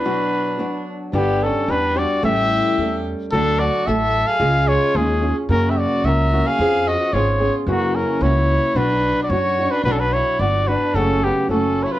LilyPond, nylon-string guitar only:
\new Staff \with { instrumentName = "Nylon-string guitar" } { \time 2/4 \key b \minor \tempo 4 = 110 <b, fis b d' fis'>4 <fis b d' fis'>4 | <g, d g b d' g'>4 <g b d' g'>8 <g b d' g'>8 | <a, e g a cis' a'>4 <g a cis' a'>4 | <d fis a fis' a'>4 <fis a fis' a'>4 |
<cis gis cis' eis' gis'>4 <gis cis' eis' gis'>8 <cis' eis' gis'>8 | <fis, cis fis ais cis' fis'>4 <fis ais cis' fis'>8 <fis ais cis' fis'>8 | <eis b cis' gis'>4 <eis b cis' gis'>8 <b cis' gis'>8 | <fis, cis e ais cis' fis'>4 <e ais cis' fis'>4 |
<b, fis d' fis'>4 <fis cis' d' fis'>8 <cis' d' fis'>8 | <b, fis b d' fis'>4 <fis b d' fis'>8 <b d' fis'>8 | <fis, cis fis a cis' fis'>4 <fis a cis' fis'>4 | }